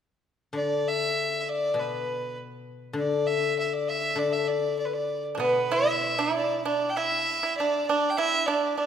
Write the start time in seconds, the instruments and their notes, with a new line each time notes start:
0.53 guzheng D3, violin D5
0.88 violin E5
1.40 violin E5
1.49 violin D5
1.74 guzheng B2
1.79 violin B4
2.93 guzheng D3
2.99 violin D5
3.27 violin E5
3.59 violin E5
3.67 violin E5
3.73 violin D5
3.89 violin E5
4.16 guzheng D3, violin D5
4.32 violin E5
4.48 violin D5
4.79 violin D5
4.85 violin B4
4.93 violin D5
5.35 guzheng B2, pipa D4
5.40 pipa B3, violin B4
5.72 pipa E4, violin E5
6.19 pipa E4
6.35 violin D5
6.65 pipa D4, violin D5
6.90 violin G5
6.96 pipa E4, violin E5
7.43 pipa E4
7.57 pipa D4, violin D5
7.87 pipa D4, violin D5
8.10 violin G5
8.17 pipa E4, violin E5
8.46 pipa D4, violin D5
8.77 pipa D4, violin D5